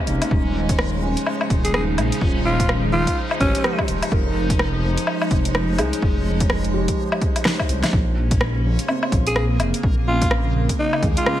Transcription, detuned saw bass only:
0, 0, Header, 1, 2, 480
1, 0, Start_track
1, 0, Tempo, 476190
1, 313, Time_signature, 4, 2, 24, 8
1, 11491, End_track
2, 0, Start_track
2, 0, Title_t, "Detuned saw bass"
2, 0, Program_c, 0, 39
2, 71, Note_on_c, 0, 29, 81
2, 206, Note_off_c, 0, 29, 0
2, 310, Note_on_c, 0, 27, 99
2, 1019, Note_off_c, 0, 27, 0
2, 1029, Note_on_c, 0, 27, 94
2, 1165, Note_off_c, 0, 27, 0
2, 1511, Note_on_c, 0, 27, 91
2, 1992, Note_on_c, 0, 34, 76
2, 2007, Note_off_c, 0, 27, 0
2, 2126, Note_off_c, 0, 34, 0
2, 2230, Note_on_c, 0, 27, 97
2, 2939, Note_off_c, 0, 27, 0
2, 2948, Note_on_c, 0, 27, 98
2, 3085, Note_off_c, 0, 27, 0
2, 3429, Note_on_c, 0, 32, 91
2, 3565, Note_off_c, 0, 32, 0
2, 3910, Note_on_c, 0, 27, 92
2, 4045, Note_off_c, 0, 27, 0
2, 4149, Note_on_c, 0, 29, 101
2, 4859, Note_off_c, 0, 29, 0
2, 4872, Note_on_c, 0, 29, 100
2, 5006, Note_off_c, 0, 29, 0
2, 5350, Note_on_c, 0, 29, 93
2, 5831, Note_on_c, 0, 36, 77
2, 5847, Note_off_c, 0, 29, 0
2, 5966, Note_off_c, 0, 36, 0
2, 6071, Note_on_c, 0, 29, 99
2, 6780, Note_off_c, 0, 29, 0
2, 6795, Note_on_c, 0, 29, 94
2, 6928, Note_off_c, 0, 29, 0
2, 7749, Note_on_c, 0, 36, 96
2, 7885, Note_off_c, 0, 36, 0
2, 7990, Note_on_c, 0, 34, 96
2, 8700, Note_off_c, 0, 34, 0
2, 8710, Note_on_c, 0, 34, 98
2, 8846, Note_off_c, 0, 34, 0
2, 9193, Note_on_c, 0, 34, 91
2, 9670, Note_on_c, 0, 29, 75
2, 9685, Note_off_c, 0, 34, 0
2, 9806, Note_off_c, 0, 29, 0
2, 9912, Note_on_c, 0, 34, 99
2, 10620, Note_off_c, 0, 34, 0
2, 10632, Note_on_c, 0, 34, 96
2, 10767, Note_off_c, 0, 34, 0
2, 11112, Note_on_c, 0, 39, 95
2, 11246, Note_off_c, 0, 39, 0
2, 11491, End_track
0, 0, End_of_file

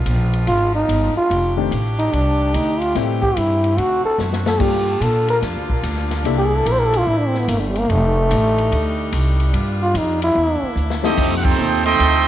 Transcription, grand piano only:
0, 0, Header, 1, 2, 480
1, 0, Start_track
1, 0, Tempo, 411523
1, 1514, Time_signature, 4, 2, 24, 8
1, 14321, End_track
2, 0, Start_track
2, 0, Title_t, "Grand piano"
2, 0, Program_c, 0, 0
2, 1829, Note_on_c, 0, 51, 72
2, 1832, Note_on_c, 0, 57, 61
2, 1834, Note_on_c, 0, 62, 62
2, 1835, Note_on_c, 0, 60, 63
2, 1836, Note_on_c, 0, 67, 69
2, 1978, Note_off_c, 0, 51, 0
2, 1979, Note_off_c, 0, 57, 0
2, 1980, Note_off_c, 0, 62, 0
2, 1981, Note_off_c, 0, 60, 0
2, 1981, Note_off_c, 0, 67, 0
2, 3446, Note_on_c, 0, 64, 62
2, 3447, Note_on_c, 0, 57, 60
2, 3450, Note_on_c, 0, 55, 64
2, 3450, Note_on_c, 0, 67, 77
2, 3452, Note_on_c, 0, 60, 60
2, 3731, Note_off_c, 0, 57, 0
2, 3731, Note_off_c, 0, 64, 0
2, 3733, Note_off_c, 0, 55, 0
2, 3733, Note_off_c, 0, 67, 0
2, 3734, Note_off_c, 0, 60, 0
2, 5363, Note_on_c, 0, 58, 51
2, 5367, Note_on_c, 0, 55, 63
2, 5370, Note_on_c, 0, 62, 51
2, 5371, Note_on_c, 0, 69, 60
2, 5372, Note_on_c, 0, 65, 54
2, 5651, Note_off_c, 0, 58, 0
2, 5653, Note_off_c, 0, 55, 0
2, 5655, Note_off_c, 0, 62, 0
2, 5655, Note_off_c, 0, 69, 0
2, 5656, Note_off_c, 0, 65, 0
2, 7297, Note_on_c, 0, 58, 57
2, 7300, Note_on_c, 0, 55, 64
2, 7300, Note_on_c, 0, 62, 56
2, 7302, Note_on_c, 0, 64, 57
2, 7303, Note_on_c, 0, 69, 65
2, 7578, Note_off_c, 0, 58, 0
2, 7580, Note_off_c, 0, 55, 0
2, 7580, Note_off_c, 0, 62, 0
2, 7581, Note_off_c, 0, 64, 0
2, 7581, Note_off_c, 0, 69, 0
2, 12867, Note_on_c, 0, 60, 57
2, 12868, Note_on_c, 0, 55, 62
2, 12869, Note_on_c, 0, 41, 61
2, 12871, Note_on_c, 0, 63, 63
2, 12874, Note_on_c, 0, 69, 71
2, 12876, Note_on_c, 0, 64, 60
2, 13476, Note_off_c, 0, 41, 0
2, 13476, Note_off_c, 0, 55, 0
2, 13476, Note_off_c, 0, 60, 0
2, 13478, Note_off_c, 0, 63, 0
2, 13479, Note_off_c, 0, 69, 0
2, 13480, Note_off_c, 0, 64, 0
2, 14321, End_track
0, 0, End_of_file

